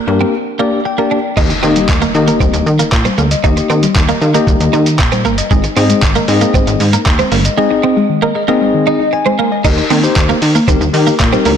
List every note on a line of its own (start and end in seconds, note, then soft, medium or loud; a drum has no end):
0.07 0.24 G2 loud
0.07 0.34 A#3 medium
0.07 0.34 D4 medium
0.07 0.34 G4 medium
0.07 0.34 A#4 medium
0.07 muted clean electric guitar stroke soft
0.21 0.31 C4 medium
0.59 0.79 A#3 medium
0.59 0.70 A#3 medium
0.59 0.79 D4 medium
0.59 0.79 G4 medium
0.59 0.79 D5 medium
0.85 1.33 G5 medium
0.85 muted clean electric guitar stroke soft
0.98 1.18 A#3 medium
0.98 1.08 A#3 medium
0.98 1.18 D4 medium
0.98 1.18 G4 medium
0.98 1.18 D5 medium
1.11 1.21 D4 medium
1.37 1.54 D#2 loud
1.37 1.50 A#3 medium
1.37 1.50 D#4 medium
1.37 1.47 D#4 medium
1.37 1.50 G4 medium
1.37 1.44 D#5 loud
1.37 1.50 D#5 medium
1.37 kick loud
1.37 crash loud
1.37 impact medium
1.37 shaker medium
1.50 1.57 D#4 medium
1.50 muted clean electric guitar stroke soft
1.50 closed hi-hat soft
1.50 shaker medium
1.63 1.80 D#3 loud
1.63 1.89 A#3 medium
1.63 1.73 C4 medium
1.63 1.89 D#4 medium
1.63 1.89 G4 medium
1.63 1.89 D#5 medium
1.63 shaker medium
1.76 1.83 G3 medium
1.76 closed hi-hat medium
1.76 shaker medium
1.89 2.06 D#2 loud
1.89 1.96 D#3 medium
1.89 kick loud
1.89 clap loud
1.89 shaker medium
2.02 2.12 A#3 medium
2.02 2.09 D#5 medium
2.02 closed hi-hat soft
2.02 shaker soft
2.14 2.32 D#3 loud
2.14 2.67 A#3 medium
2.14 2.67 D#4 medium
2.14 2.67 G4 medium
2.14 2.67 D#5 medium
2.14 muted clean electric guitar stroke soft
2.14 shaker soft
2.28 2.35 A#3 medium
2.28 2.38 A#3 medium
2.28 closed hi-hat medium
2.28 shaker medium
2.40 2.49 D#2 loud
2.40 2.47 G3 medium
2.40 2.51 C4 medium
2.40 kick loud
2.40 shaker medium
2.53 2.62 D#2 loud
2.53 2.60 D#3 medium
2.53 muted clean electric guitar stroke soft
2.53 closed hi-hat medium
2.53 shaker medium
2.66 2.83 D#3 medium
2.66 2.73 D#5 medium
2.66 shaker medium
2.79 2.89 A#3 medium
2.79 2.86 D#4 medium
2.79 closed hi-hat medium
2.79 shaker medium
2.92 3.09 A#2 medium
2.92 muted clean electric guitar stroke soft
2.92 kick loud
2.92 clap loud
2.92 shaker medium
3.05 3.12 G3 medium
3.05 3.15 C4 medium
3.05 closed hi-hat soft
3.05 shaker soft
3.18 3.35 D2 medium
3.18 3.28 A#3 medium
3.18 shaker medium
3.31 3.38 D#5 loud
3.31 closed hi-hat medium
3.31 shaker medium
3.44 3.61 D#2 loud
3.44 3.83 A#3 medium
3.44 3.54 D#4 medium
3.44 3.83 D#4 medium
3.44 3.83 G4 medium
3.44 3.51 D#5 loud
3.44 3.83 D#5 medium
3.44 kick loud
3.44 shaker medium
3.57 3.64 D#4 medium
3.57 muted clean electric guitar stroke soft
3.57 closed hi-hat medium
3.57 shaker medium
3.70 3.87 D#3 medium
3.70 3.80 C4 medium
3.70 shaker medium
3.83 3.90 G3 medium
3.83 closed hi-hat medium
3.83 shaker medium
3.96 4.12 D#2 loud
3.96 4.03 D#3 medium
3.96 kick loud
3.96 clap loud
3.96 shaker medium
4.09 4.19 A#3 medium
4.09 4.16 D#5 medium
4.09 closed hi-hat soft
4.09 shaker soft
4.21 4.38 D#3 loud
4.21 4.28 G4 medium
4.21 4.28 F5 medium
4.21 muted clean electric guitar stroke soft
4.21 shaker medium
4.34 4.87 A#3 medium
4.34 4.45 A#3 medium
4.34 4.41 A#3 medium
4.34 4.87 D#4 medium
4.34 4.87 G4 medium
4.34 4.87 D#5 loud
4.34 closed hi-hat medium
4.34 shaker medium
4.47 4.56 D#2 loud
4.47 4.54 G3 medium
4.47 kick loud
4.47 shaker medium
4.60 4.69 D#2 loud
4.60 4.67 D#3 medium
4.60 closed hi-hat medium
4.60 shaker medium
4.73 5.01 D#3 loud
4.73 4.83 D#4 medium
4.73 4.80 D#5 medium
4.73 shaker medium
4.86 4.93 D#4 medium
4.86 closed hi-hat medium
4.86 shaker medium
4.99 5.26 A#2 loud
4.99 muted clean electric guitar stroke soft
4.99 kick loud
4.99 clap loud
4.99 shaker medium
5.12 5.19 G3 medium
5.12 5.22 C4 medium
5.12 closed hi-hat soft
5.12 shaker soft
5.25 5.42 G1 medium
5.25 5.35 A#3 medium
5.25 shaker medium
5.38 5.45 D#5 loud
5.38 closed hi-hat medium
5.38 shaker medium
5.51 5.68 G#1 loud
5.51 5.61 G#3 medium
5.51 5.64 C4 medium
5.51 5.64 D#4 medium
5.51 5.64 G#4 medium
5.51 5.58 D#5 medium
5.51 5.64 D#5 loud
5.51 kick loud
5.51 shaker medium
5.64 5.71 D#4 medium
5.64 muted clean electric guitar stroke soft
5.64 closed hi-hat medium
5.64 shaker medium
5.76 5.94 G#2 loud
5.76 6.03 C4 medium
5.76 5.87 C4 medium
5.76 6.03 D#4 medium
5.76 6.03 G#4 medium
5.76 6.03 D#5 loud
5.76 open hi-hat medium
5.76 shaker medium
5.90 5.97 G#3 medium
5.90 closed hi-hat medium
5.90 shaker medium
6.02 6.19 G#1 loud
6.02 6.10 D#3 medium
6.02 kick loud
6.02 clap loud
6.02 shaker medium
6.15 6.26 A#3 medium
6.15 6.23 D#5 medium
6.15 closed hi-hat medium
6.15 shaker medium
6.28 6.45 G#2 loud
6.28 6.81 C4 medium
6.28 6.81 D#4 medium
6.28 6.81 G#4 medium
6.28 6.81 D#5 medium
6.28 muted clean electric guitar stroke soft
6.28 open hi-hat medium
6.28 shaker medium
6.41 6.52 A#3 medium
6.41 6.48 C4 medium
6.41 closed hi-hat medium
6.41 shaker medium
6.54 6.63 G#1 loud
6.54 6.61 G#3 medium
6.54 6.65 C4 medium
6.54 kick loud
6.54 shaker medium
6.67 6.76 G#1 loud
6.67 6.74 D#3 medium
6.67 muted clean electric guitar stroke soft
6.67 closed hi-hat medium
6.67 shaker medium
6.80 6.97 G#2 loud
6.80 6.87 D#5 medium
6.80 open hi-hat medium
6.80 shaker medium
6.93 7.03 A#3 medium
6.93 7.00 D#4 medium
6.93 closed hi-hat medium
6.93 shaker medium
7.06 7.23 D#2 loud
7.06 muted clean electric guitar stroke soft
7.06 kick loud
7.06 clap loud
7.06 shaker medium
7.19 7.26 G#3 medium
7.19 7.29 C4 medium
7.19 closed hi-hat soft
7.19 shaker medium
7.32 7.49 G1 medium
7.32 7.42 A#3 medium
7.32 open hi-hat medium
7.32 shaker medium
7.45 7.52 D#5 loud
7.45 closed hi-hat medium
7.45 shaker medium
7.57 7.68 G#3 medium
7.57 7.97 C4 medium
7.57 7.97 D#4 medium
7.57 7.97 G#4 medium
7.57 7.97 D#5 medium
7.57 7.65 D#5 medium
7.71 7.78 D#4 medium
7.71 muted clean electric guitar stroke soft
7.83 7.94 C4 medium
7.97 8.04 G#3 medium
8.09 8.16 D#3 medium
8.22 8.33 A#3 medium
8.22 8.29 D#5 medium
8.35 8.42 G#4 medium
8.35 8.42 D#5 medium
8.35 muted clean electric guitar stroke soft
8.48 8.58 A#3 medium
8.48 9.00 C4 medium
8.48 8.55 C4 medium
8.48 9.01 D#4 medium
8.48 9.01 G#4 medium
8.48 8.86 D#5 loud
8.61 8.68 G#3 medium
8.74 8.81 D#3 medium
8.87 8.97 D#4 medium
8.87 9.11 D#5 medium
8.87 8.94 D#5 medium
9.00 9.07 D#4 medium
9.13 9.61 G#5 medium
9.13 muted clean electric guitar stroke soft
9.26 9.33 G#3 medium
9.26 9.36 C4 medium
9.39 9.49 A#3 medium
9.52 9.59 D#5 loud
9.64 9.81 D#2 loud
9.64 9.84 D#4 medium
9.64 9.75 D#4 medium
9.64 9.84 G4 medium
9.64 9.84 A#4 medium
9.64 9.72 D#5 medium
9.64 kick loud
9.64 closed hi-hat medium
9.64 crash loud
9.64 shaker medium
9.78 9.85 D#4 medium
9.78 muted clean electric guitar stroke soft
9.78 shaker medium
9.90 10.07 D#3 loud
9.90 9.97 A#3 medium
9.90 10.01 C4 medium
9.90 open hi-hat medium
9.90 shaker medium
10.03 10.36 D#4 medium
10.03 10.36 G4 medium
10.03 10.36 C5 loud
10.03 shaker medium
10.16 10.33 D#2 loud
10.16 kick loud
10.16 clap loud
10.16 closed hi-hat medium
10.16 shaker medium
10.29 10.39 A#3 medium
10.29 shaker medium
10.42 10.59 D#3 loud
10.42 muted clean electric guitar stroke soft
10.42 open hi-hat medium
10.42 shaker medium
10.55 10.62 A#3 medium
10.55 10.65 A#3 medium
10.55 shaker medium
10.68 10.76 D#2 loud
10.68 10.75 G3 medium
10.68 10.78 C4 medium
10.68 10.81 D#4 medium
10.68 10.81 G4 medium
10.68 10.81 A#4 medium
10.68 kick loud
10.68 closed hi-hat medium
10.68 shaker medium
10.81 10.89 D#2 loud
10.81 10.88 D#3 medium
10.81 muted clean electric guitar stroke soft
10.81 shaker medium
10.94 11.11 D#3 loud
10.94 11.13 D#4 medium
10.94 11.13 G4 medium
10.94 11.14 A#4 loud
10.94 11.01 D#5 medium
10.94 open hi-hat medium
10.94 shaker medium
11.07 11.17 A#3 medium
11.07 shaker medium
11.20 11.37 A#2 loud
11.20 11.27 A#3 medium
11.20 muted clean electric guitar stroke soft
11.20 kick loud
11.20 clap loud
11.20 closed hi-hat medium
11.20 shaker medium
11.32 11.40 G3 medium
11.32 11.43 C4 medium
11.32 11.52 D#4 medium
11.32 11.52 G4 medium
11.32 11.52 A#4 medium
11.32 shaker soft
11.45 11.57 D2 loud
11.45 11.56 A#3 medium
11.45 open hi-hat medium
11.45 shaker medium